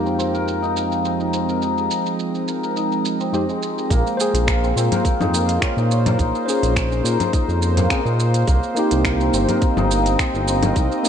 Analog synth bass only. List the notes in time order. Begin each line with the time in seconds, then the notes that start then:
3.90 A#1
4.34 A#1
4.76 A#2
5.20 F2
5.77 A#2
6.19 A#1
6.63 A#1
7.04 A#2
7.48 F2
8.05 A#2
8.48 C2
8.91 C2
9.33 G1
9.77 G1
10.34 G1
10.76 C2